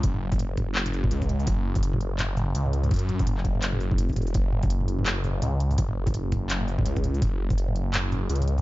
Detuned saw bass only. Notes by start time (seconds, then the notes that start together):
0.04 F#1
1.11 C#2
1.47 F#1
2.55 C#2
2.91 F#2
3.27 F#1
4.02 F1
4.23 E1
4.35 F#1
5.42 C#2
5.78 F#1
6.86 C#2
7.22 F#1
8.30 C#2